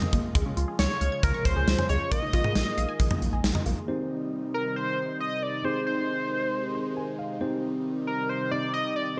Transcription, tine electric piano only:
3.88 C4 D#4 G4 C5
5.65 C4 D#4 G#4 C5
6.75 C6
6.97 G#5
7.19 F5
7.41 C4 D#4 G4 C5
8.51 C4 D#4 G4 D#5

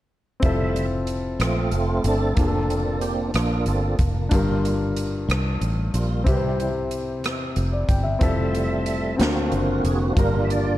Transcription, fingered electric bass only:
0.43 F1
1.39 A#1
1.72 F1
2.04 G1
2.37 F1
3.34 A#1
3.66 G1
3.99 F1
4.32 G1
5.28 C2
5.61 A1
5.94 A#1
6.26 C2
7.23 E2
7.56 F1
7.89 G1
8.21 F1
9.19 D2
9.52 F#1
9.84 F1
10.17 G1

